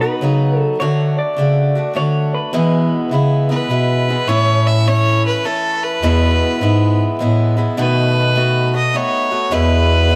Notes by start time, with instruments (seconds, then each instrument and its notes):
Already playing: bass clarinet B2
0.01 steel-string acoustic guitar B3 D#4 F#4, clean electric guitar B4
0.21 bass clarinet C#3, steel-string acoustic guitar F#3 B3 D#4 F#4
0.59 clean electric guitar A4
0.80 bass clarinet D3, steel-string acoustic guitar D3 A3 D4 F#4, clean electric guitar C#5
1.19 clean electric guitar D5
1.36 bass clarinet C#3, steel-string acoustic guitar D3 A3 D4 F#4
1.75 steel-string acoustic guitar A3 D4 F#4
1.94 steel-string acoustic guitar D3 A3 D4 F#4, bass clarinet D3, clean electric guitar C#5
2.35 clean electric guitar B4
2.53 steel-string acoustic guitar E2 B2 E3 G#3 B3 E4, bass clarinet E3
3.11 bass clarinet C#3, steel-string acoustic guitar E3 G#3 B3 E4
3.49 steel-string acoustic guitar E3 G#3 B3 E4, fiddle B4
3.70 bass clarinet B2, steel-string acoustic guitar E3 G#3 B3 E4
4.08 steel-string acoustic guitar E3 G#3 B3 E4
4.28 steel-string acoustic guitar A2 E3 A3 C#4 E4, bass clarinet A2, fiddle C#5
4.67 fiddle E5
4.86 steel-string acoustic guitar E3 A3 C#4 E4, fiddle C#5
5.26 fiddle B4
5.44 steel-string acoustic guitar E3 A3 C#4 E4, fiddle A4
5.83 fiddle B4
6.02 bass clarinet E2, steel-string acoustic guitar E2 B2 E3 G#3 B3 E4
6.61 bass clarinet G#2, steel-string acoustic guitar E3 G#3 B3 E4
7.19 bass clarinet A2, steel-string acoustic guitar E3 G#3 B3 E4
7.57 steel-string acoustic guitar E3 G#3 B3 E4
7.77 steel-string acoustic guitar B2 D#3 A3 B3 F#4, bass clarinet B2, fiddle B4
8.35 steel-string acoustic guitar D#3 A3 B3 F#4
8.73 steel-string acoustic guitar A3 B3 F#4, fiddle D#5
8.93 steel-string acoustic guitar D#3 A3 B3 F#4, fiddle C#5
9.31 steel-string acoustic guitar A3 B3 F#4
9.51 steel-string acoustic guitar E2 B2 E3 G#3 B3 E4, bass clarinet E2, fiddle B4
10.09 steel-string acoustic guitar E3 G#3 B3 E4